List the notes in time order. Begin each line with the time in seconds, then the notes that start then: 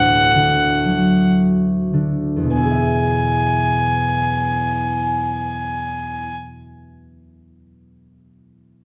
Already playing: D2 A2 F#5
0.35 D3
0.85 F#3
1.93 D3
2.36 E2
2.43 B2
2.50 B3 G#5
2.57 E4
2.64 G#4
2.71 E5